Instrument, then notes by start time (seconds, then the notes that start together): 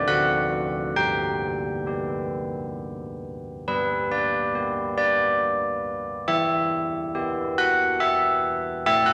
church bells
0.07 D3 C4 A4 F#5
0.96 G3 G5
1.86 B3 G4
3.68 G3 B4
4.12 D5
4.55 B3 G4
4.98 D5
6.28 E3 E5
7.15 B3 G4
7.58 F#5
8.00 E5
8.86 A3 E5
9.06 F#5